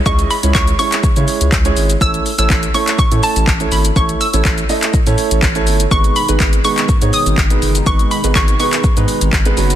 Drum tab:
HH |-xox-xox-xox-xox|-xox-xox-xox-xox|-xox-xox-xox-xox|-xox-xox-xox-xox|
SH |xxxxxxxxxxxxxxxx|xxxxxxxxxxxxxxxx|xxxxxxxxxxxxxxxx|xxxxxxxxxxxxxxxx|
CP |----x--x----x---|----x--x----x---|----x--x----x---|----x--x----x---|
BD |o---o---o---o---|o---o---o---o---|o---o---o---o---|o---o---o---o---|

HH |-xox-xox-xox-xox|
SH |xxxxxxxxxxxxxxxx|
CP |----x--x----x---|
BD |o---o---o---o---|